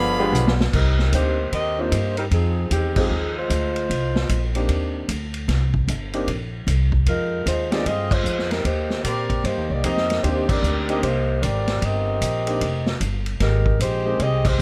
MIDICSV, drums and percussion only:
0, 0, Header, 1, 2, 480
1, 0, Start_track
1, 0, Key_signature, -3, "minor"
1, 0, Tempo, 396040
1, 885, Time_signature, 4, 2, 24, 8
1, 17718, End_track
2, 0, Start_track
2, 0, Title_t, "Drums"
2, 420, Note_on_c, 9, 44, 61
2, 541, Note_off_c, 9, 44, 0
2, 576, Note_on_c, 9, 38, 74
2, 697, Note_off_c, 9, 38, 0
2, 733, Note_on_c, 9, 38, 93
2, 854, Note_off_c, 9, 38, 0
2, 889, Note_on_c, 9, 36, 75
2, 889, Note_on_c, 9, 49, 77
2, 1010, Note_off_c, 9, 36, 0
2, 1011, Note_off_c, 9, 49, 0
2, 1199, Note_on_c, 9, 38, 42
2, 1320, Note_off_c, 9, 38, 0
2, 1365, Note_on_c, 9, 44, 65
2, 1365, Note_on_c, 9, 51, 66
2, 1366, Note_on_c, 9, 36, 20
2, 1487, Note_off_c, 9, 36, 0
2, 1487, Note_off_c, 9, 44, 0
2, 1487, Note_off_c, 9, 51, 0
2, 1847, Note_on_c, 9, 36, 25
2, 1850, Note_on_c, 9, 51, 66
2, 1969, Note_off_c, 9, 36, 0
2, 1971, Note_off_c, 9, 51, 0
2, 2325, Note_on_c, 9, 36, 25
2, 2326, Note_on_c, 9, 44, 68
2, 2326, Note_on_c, 9, 51, 74
2, 2446, Note_off_c, 9, 36, 0
2, 2447, Note_off_c, 9, 44, 0
2, 2447, Note_off_c, 9, 51, 0
2, 2631, Note_on_c, 9, 51, 43
2, 2752, Note_off_c, 9, 51, 0
2, 2804, Note_on_c, 9, 36, 28
2, 2805, Note_on_c, 9, 51, 62
2, 2925, Note_off_c, 9, 36, 0
2, 2926, Note_off_c, 9, 51, 0
2, 3283, Note_on_c, 9, 44, 65
2, 3283, Note_on_c, 9, 51, 69
2, 3285, Note_on_c, 9, 36, 27
2, 3404, Note_off_c, 9, 44, 0
2, 3404, Note_off_c, 9, 51, 0
2, 3406, Note_off_c, 9, 36, 0
2, 3587, Note_on_c, 9, 49, 76
2, 3590, Note_on_c, 9, 36, 84
2, 3708, Note_off_c, 9, 49, 0
2, 3711, Note_off_c, 9, 36, 0
2, 4245, Note_on_c, 9, 36, 24
2, 4245, Note_on_c, 9, 44, 55
2, 4245, Note_on_c, 9, 51, 76
2, 4366, Note_off_c, 9, 36, 0
2, 4367, Note_off_c, 9, 44, 0
2, 4367, Note_off_c, 9, 51, 0
2, 4556, Note_on_c, 9, 51, 43
2, 4677, Note_off_c, 9, 51, 0
2, 4727, Note_on_c, 9, 36, 21
2, 4735, Note_on_c, 9, 51, 68
2, 4848, Note_off_c, 9, 36, 0
2, 4856, Note_off_c, 9, 51, 0
2, 5037, Note_on_c, 9, 38, 63
2, 5159, Note_off_c, 9, 38, 0
2, 5204, Note_on_c, 9, 44, 57
2, 5204, Note_on_c, 9, 51, 71
2, 5205, Note_on_c, 9, 36, 26
2, 5325, Note_off_c, 9, 44, 0
2, 5325, Note_off_c, 9, 51, 0
2, 5326, Note_off_c, 9, 36, 0
2, 5513, Note_on_c, 9, 51, 49
2, 5634, Note_off_c, 9, 51, 0
2, 5681, Note_on_c, 9, 51, 59
2, 5684, Note_on_c, 9, 36, 27
2, 5802, Note_off_c, 9, 51, 0
2, 5805, Note_off_c, 9, 36, 0
2, 6164, Note_on_c, 9, 36, 20
2, 6165, Note_on_c, 9, 44, 55
2, 6165, Note_on_c, 9, 51, 73
2, 6285, Note_off_c, 9, 36, 0
2, 6286, Note_off_c, 9, 44, 0
2, 6286, Note_off_c, 9, 51, 0
2, 6470, Note_on_c, 9, 51, 46
2, 6591, Note_off_c, 9, 51, 0
2, 6646, Note_on_c, 9, 36, 23
2, 6648, Note_on_c, 9, 38, 40
2, 6649, Note_on_c, 9, 51, 63
2, 6768, Note_off_c, 9, 36, 0
2, 6769, Note_off_c, 9, 38, 0
2, 6770, Note_off_c, 9, 51, 0
2, 6954, Note_on_c, 9, 36, 57
2, 7076, Note_off_c, 9, 36, 0
2, 7127, Note_on_c, 9, 36, 19
2, 7131, Note_on_c, 9, 44, 65
2, 7131, Note_on_c, 9, 51, 67
2, 7248, Note_off_c, 9, 36, 0
2, 7252, Note_off_c, 9, 44, 0
2, 7252, Note_off_c, 9, 51, 0
2, 7435, Note_on_c, 9, 51, 46
2, 7556, Note_off_c, 9, 51, 0
2, 7606, Note_on_c, 9, 36, 19
2, 7608, Note_on_c, 9, 51, 64
2, 7727, Note_off_c, 9, 36, 0
2, 7729, Note_off_c, 9, 51, 0
2, 8085, Note_on_c, 9, 36, 23
2, 8091, Note_on_c, 9, 44, 53
2, 8091, Note_on_c, 9, 51, 72
2, 8206, Note_off_c, 9, 36, 0
2, 8212, Note_off_c, 9, 44, 0
2, 8212, Note_off_c, 9, 51, 0
2, 8389, Note_on_c, 9, 36, 47
2, 8510, Note_off_c, 9, 36, 0
2, 8562, Note_on_c, 9, 36, 25
2, 8562, Note_on_c, 9, 51, 68
2, 8683, Note_off_c, 9, 36, 0
2, 8683, Note_off_c, 9, 51, 0
2, 9043, Note_on_c, 9, 36, 23
2, 9049, Note_on_c, 9, 44, 59
2, 9049, Note_on_c, 9, 51, 75
2, 9165, Note_off_c, 9, 36, 0
2, 9170, Note_off_c, 9, 44, 0
2, 9170, Note_off_c, 9, 51, 0
2, 9355, Note_on_c, 9, 38, 50
2, 9356, Note_on_c, 9, 51, 49
2, 9476, Note_off_c, 9, 38, 0
2, 9477, Note_off_c, 9, 51, 0
2, 9523, Note_on_c, 9, 36, 27
2, 9527, Note_on_c, 9, 51, 67
2, 9644, Note_off_c, 9, 36, 0
2, 9648, Note_off_c, 9, 51, 0
2, 9830, Note_on_c, 9, 36, 80
2, 9837, Note_on_c, 9, 49, 75
2, 9952, Note_off_c, 9, 36, 0
2, 9959, Note_off_c, 9, 49, 0
2, 10004, Note_on_c, 9, 44, 56
2, 10126, Note_off_c, 9, 44, 0
2, 10166, Note_on_c, 9, 38, 33
2, 10287, Note_off_c, 9, 38, 0
2, 10313, Note_on_c, 9, 51, 42
2, 10321, Note_on_c, 9, 38, 43
2, 10435, Note_off_c, 9, 51, 0
2, 10442, Note_off_c, 9, 38, 0
2, 10482, Note_on_c, 9, 36, 27
2, 10484, Note_on_c, 9, 51, 62
2, 10603, Note_off_c, 9, 36, 0
2, 10605, Note_off_c, 9, 51, 0
2, 10789, Note_on_c, 9, 38, 42
2, 10910, Note_off_c, 9, 38, 0
2, 10963, Note_on_c, 9, 36, 28
2, 10963, Note_on_c, 9, 44, 53
2, 10963, Note_on_c, 9, 51, 74
2, 11084, Note_off_c, 9, 36, 0
2, 11084, Note_off_c, 9, 44, 0
2, 11084, Note_off_c, 9, 51, 0
2, 11268, Note_on_c, 9, 36, 47
2, 11269, Note_on_c, 9, 51, 49
2, 11389, Note_off_c, 9, 36, 0
2, 11390, Note_off_c, 9, 51, 0
2, 11444, Note_on_c, 9, 36, 19
2, 11448, Note_on_c, 9, 51, 62
2, 11565, Note_off_c, 9, 36, 0
2, 11569, Note_off_c, 9, 51, 0
2, 11923, Note_on_c, 9, 44, 62
2, 11923, Note_on_c, 9, 51, 77
2, 11925, Note_on_c, 9, 36, 19
2, 12044, Note_off_c, 9, 44, 0
2, 12044, Note_off_c, 9, 51, 0
2, 12046, Note_off_c, 9, 36, 0
2, 12086, Note_on_c, 9, 38, 31
2, 12207, Note_off_c, 9, 38, 0
2, 12240, Note_on_c, 9, 51, 46
2, 12254, Note_on_c, 9, 38, 42
2, 12361, Note_off_c, 9, 51, 0
2, 12375, Note_off_c, 9, 38, 0
2, 12407, Note_on_c, 9, 36, 27
2, 12411, Note_on_c, 9, 51, 63
2, 12529, Note_off_c, 9, 36, 0
2, 12532, Note_off_c, 9, 51, 0
2, 12714, Note_on_c, 9, 36, 83
2, 12716, Note_on_c, 9, 49, 78
2, 12835, Note_off_c, 9, 36, 0
2, 12837, Note_off_c, 9, 49, 0
2, 12892, Note_on_c, 9, 44, 60
2, 13013, Note_off_c, 9, 44, 0
2, 13195, Note_on_c, 9, 51, 49
2, 13317, Note_off_c, 9, 51, 0
2, 13369, Note_on_c, 9, 36, 25
2, 13369, Note_on_c, 9, 51, 64
2, 13490, Note_off_c, 9, 36, 0
2, 13491, Note_off_c, 9, 51, 0
2, 13849, Note_on_c, 9, 36, 22
2, 13852, Note_on_c, 9, 44, 59
2, 13852, Note_on_c, 9, 51, 72
2, 13970, Note_off_c, 9, 36, 0
2, 13973, Note_off_c, 9, 44, 0
2, 13973, Note_off_c, 9, 51, 0
2, 14150, Note_on_c, 9, 38, 45
2, 14151, Note_on_c, 9, 51, 46
2, 14271, Note_off_c, 9, 38, 0
2, 14272, Note_off_c, 9, 51, 0
2, 14327, Note_on_c, 9, 36, 26
2, 14327, Note_on_c, 9, 51, 60
2, 14448, Note_off_c, 9, 36, 0
2, 14448, Note_off_c, 9, 51, 0
2, 14806, Note_on_c, 9, 44, 64
2, 14806, Note_on_c, 9, 51, 74
2, 14807, Note_on_c, 9, 36, 20
2, 14927, Note_off_c, 9, 44, 0
2, 14927, Note_off_c, 9, 51, 0
2, 14928, Note_off_c, 9, 36, 0
2, 15112, Note_on_c, 9, 51, 49
2, 15234, Note_off_c, 9, 51, 0
2, 15286, Note_on_c, 9, 36, 24
2, 15286, Note_on_c, 9, 51, 67
2, 15407, Note_off_c, 9, 36, 0
2, 15407, Note_off_c, 9, 51, 0
2, 15592, Note_on_c, 9, 38, 58
2, 15713, Note_off_c, 9, 38, 0
2, 15764, Note_on_c, 9, 44, 56
2, 15764, Note_on_c, 9, 51, 66
2, 15766, Note_on_c, 9, 36, 23
2, 15886, Note_off_c, 9, 44, 0
2, 15886, Note_off_c, 9, 51, 0
2, 15887, Note_off_c, 9, 36, 0
2, 16071, Note_on_c, 9, 51, 44
2, 16193, Note_off_c, 9, 51, 0
2, 16243, Note_on_c, 9, 38, 42
2, 16244, Note_on_c, 9, 51, 65
2, 16245, Note_on_c, 9, 36, 20
2, 16364, Note_off_c, 9, 38, 0
2, 16365, Note_off_c, 9, 51, 0
2, 16366, Note_off_c, 9, 36, 0
2, 16553, Note_on_c, 9, 36, 61
2, 16674, Note_off_c, 9, 36, 0
2, 16728, Note_on_c, 9, 36, 26
2, 16732, Note_on_c, 9, 44, 65
2, 16732, Note_on_c, 9, 51, 75
2, 16849, Note_off_c, 9, 36, 0
2, 16853, Note_off_c, 9, 44, 0
2, 16853, Note_off_c, 9, 51, 0
2, 17204, Note_on_c, 9, 36, 20
2, 17206, Note_on_c, 9, 51, 61
2, 17326, Note_off_c, 9, 36, 0
2, 17327, Note_off_c, 9, 51, 0
2, 17511, Note_on_c, 9, 36, 89
2, 17513, Note_on_c, 9, 49, 76
2, 17632, Note_off_c, 9, 36, 0
2, 17634, Note_off_c, 9, 49, 0
2, 17718, End_track
0, 0, End_of_file